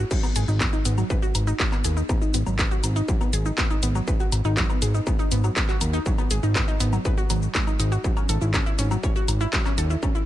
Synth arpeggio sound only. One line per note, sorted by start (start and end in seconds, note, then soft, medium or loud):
0.11 0.18 F#3 medium
0.23 0.34 B3 medium
0.36 0.43 G#4 medium
0.48 0.52 D#4 medium
0.61 0.67 B3 medium
0.73 0.77 D#4 loud
0.85 0.92 B3 medium
0.98 1.02 F#3 medium
1.10 1.17 B4 medium
1.22 1.29 F#4 loud
1.47 1.54 D#4 loud
1.60 1.66 F#3 medium
1.72 1.82 B3 medium
1.84 1.91 G#4 medium
1.97 2.01 D#4 medium
2.09 2.16 B3 medium
2.22 2.26 D#4 loud
2.34 2.41 B3 medium
2.46 2.51 F#3 medium
2.59 2.66 B4 medium
2.71 2.78 F#4 loud
2.96 3.03 D#4 loud
3.08 3.15 F#3 medium
3.21 3.31 B3 medium
3.33 3.40 G#4 medium
3.46 3.50 D#4 medium
3.58 3.65 B3 medium
3.70 3.74 D#4 loud
3.83 3.90 B3 medium
3.95 3.99 F#3 medium
4.08 4.14 B4 medium
4.20 4.27 F#4 loud
4.45 4.52 D#4 loud
4.57 4.64 F#3 medium
4.70 4.80 B3 medium
4.82 4.89 G#4 medium
4.95 4.99 D#4 medium
5.07 5.14 B3 medium
5.19 5.23 D#4 loud
5.32 5.38 B3 medium
5.44 5.48 F#3 medium
5.56 5.63 B4 medium
5.69 5.76 F#4 loud
5.93 6.00 D#4 loud
6.06 6.13 F#3 medium
6.18 6.29 B3 medium
6.31 6.38 G#4 medium
6.43 6.47 D#4 medium
6.55 6.62 B3 medium
6.68 6.72 D#4 loud
6.80 6.87 B3 medium
6.93 6.97 F#3 medium
7.05 7.12 B4 medium
7.18 7.24 F#4 loud
7.30 7.34 F#3 medium
7.55 7.65 G#3 medium
7.67 7.74 D#4 medium
7.79 7.86 D#4 medium
7.92 7.99 F#4 medium
8.04 8.11 F#3 medium
8.17 8.27 C#4 medium
8.29 8.36 A4 medium
8.41 8.46 E4 medium
8.54 8.61 C#4 medium
8.66 8.70 E4 loud
8.79 8.85 C#4 medium
8.91 8.95 F#3 medium
9.03 9.10 C#5 medium
9.16 9.23 F#4 loud
9.41 9.47 E4 loud
9.53 9.60 F#3 medium
9.65 9.76 C#4 medium
9.78 9.85 A4 medium
9.90 9.94 E4 medium
10.03 10.09 C#4 medium
10.15 10.19 E4 loud